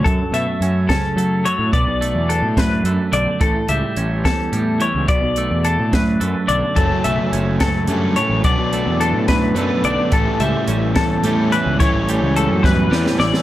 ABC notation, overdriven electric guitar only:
X:1
M:6/8
L:1/8
Q:3/8=71
K:F#phr
V:1 name="Overdriven electric guitar" clef=bass
z6 | z6 | z6 | z6 |
[F,,C,F,A,C]4 [F,,C,F,A,C]2 | [B,,F,B,D]4 [B,,F,B,D]2 | [A,,E,G,CE]4 [A,,E,G,CE]2 | [A,,E,G,CE]4 [A,,E,G,CE]2 |]